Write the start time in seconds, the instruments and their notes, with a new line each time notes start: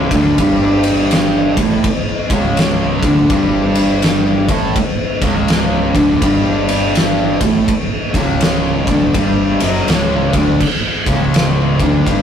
Already playing: distorted electric guitar C#2 C#3
0.11 fingered electric bass D1, distorted electric guitar D2 D3, kick, ride
0.38 fingered electric bass G1, distorted electric guitar G2 G3, kick, ride
0.83 ride
1.11 snare, ride
1.57 fingered electric bass A1, distorted electric guitar A2 A3, kick, ride
1.84 kick, ride
2.30 fingered electric bass C#1, distorted electric guitar C#2 C#3, kick, ride
2.57 snare, ride
3.02 fingered electric bass D1, distorted electric guitar D2 D3, kick, ride
3.30 fingered electric bass G1, distorted electric guitar G2 G3, kick, ride
3.75 ride
4.02 snare, ride
4.48 fingered electric bass A1, distorted electric guitar A2 A3, kick, ride
4.76 kick, ride
5.22 fingered electric bass C#1, distorted electric guitar C#2 C#3, kick, ride
5.48 snare, ride
5.94 fingered electric bass D1, distorted electric guitar D2 D3, kick, ride
6.21 fingered electric bass G1, distorted electric guitar G2 G3, kick, ride
6.69 ride
6.95 snare, ride
7.41 fingered electric bass A1, distorted electric guitar A2 A3, kick, ride
7.68 kick, ride
8.14 fingered electric bass C#1, distorted electric guitar C#2 C#3, kick, ride
8.41 snare, ride
8.87 fingered electric bass D1, distorted electric guitar D2 D3, kick, ride
9.14 fingered electric bass G1, distorted electric guitar G2 G3, kick, ride
9.60 fingered electric bass F#1, distorted electric guitar F#2 F#3, ride
9.87 fingered electric bass C#1, distorted electric guitar C#2 C#3, snare, ride
10.33 fingered electric bass D1, distorted electric guitar D2 D3, kick, ride
10.60 kick, crash
11.06 fingered electric bass C#1, distorted electric guitar C#2 C#3, kick, ride
11.34 snare, ride
11.80 fingered electric bass D1, distorted electric guitar D2 D3, kick, ride
12.06 fingered electric bass G1, distorted electric guitar G2 G3, kick, ride